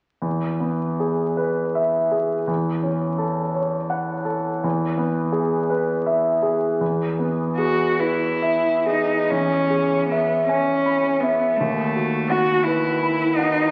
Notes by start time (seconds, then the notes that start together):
0.22 E2
0.60 B3
1.00 G#4
1.37 B4
1.75 E5
2.11 G#4
2.47 E2
2.83 C#4
3.18 A4
3.55 C#5
3.90 F#5
4.25 A4
4.64 E2
4.98 B3
5.32 G#4
5.70 B4
6.06 E5
6.42 G#4
6.81 E2
7.19 B3
7.58 F#4 G#4
7.99 E4 B4
8.42 E5
8.86 D#4 G#4
9.30 E2 C#4
9.70 G#4
10.09 B3 E5
10.47 C#4 G#5
10.86 B5
11.20 B3 E5
11.57 D#2 A3
11.96 F#4
12.30 F#4 F#5
12.63 E4 B4
13.03 B5
13.36 D#4 F#5